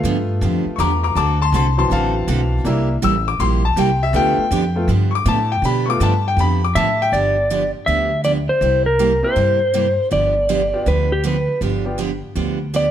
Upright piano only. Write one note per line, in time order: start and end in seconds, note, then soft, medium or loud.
0.00 1.11 A3 medium
0.00 1.12 B3 medium
0.00 1.12 F4 medium
0.76 1.02 A#5 medium
0.76 0.79 C#6 medium
0.80 1.03 D6 loud
1.03 1.15 A#5 medium
1.03 1.16 D6 medium
1.17 1.39 A5 medium
1.17 1.40 D6 loud
1.42 1.53 A5 medium
1.42 1.54 C6 loud
1.55 1.77 A5 medium
1.55 1.77 C6 medium
1.77 2.61 E3 medium
1.77 2.61 F#3 medium
1.77 2.61 C4 medium
1.77 1.90 A5 medium
1.77 1.91 C6 medium
1.92 2.62 F5 medium
1.92 2.64 A5 medium
2.65 2.93 A#3 medium
2.65 2.93 D4 medium
2.65 2.94 E4 medium
3.04 3.27 E6 loud
3.28 3.40 D6 loud
3.40 3.63 C6 medium
3.65 3.77 A5 loud
3.79 4.01 G5 loud
4.03 4.15 E5 loud
4.14 4.42 A3 medium
4.14 4.42 B3 medium
4.14 4.43 F4 medium
4.14 4.88 G5 loud
4.76 4.87 A3 medium
4.76 4.88 B3 soft
4.76 4.88 F4 medium
5.11 5.13 C#6 medium
5.15 5.27 D6 loud
5.28 5.51 A5 loud
5.52 5.64 G5 medium
5.65 5.88 B5 loud
5.86 6.10 A3 medium
5.86 6.10 B3 medium
5.86 6.10 F4 medium
5.86 5.87 C#6 medium
5.90 6.02 D6 loud
6.03 6.26 A5 medium
6.28 6.39 G5 medium
6.40 6.63 B5 loud
6.64 6.76 D6 medium
6.77 7.00 A5 loud
7.02 7.14 G5 loud
9.23 9.35 A#3 medium
9.23 9.35 C4 medium
9.23 9.35 E4 medium
9.23 9.36 G4 medium
10.73 10.85 B3 medium
10.73 10.85 D4 medium
10.73 10.85 F4 medium
10.73 10.85 G4 medium
11.85 11.97 B3 medium
11.85 11.97 D4 medium
11.85 11.97 F4 medium
11.85 11.97 G4 medium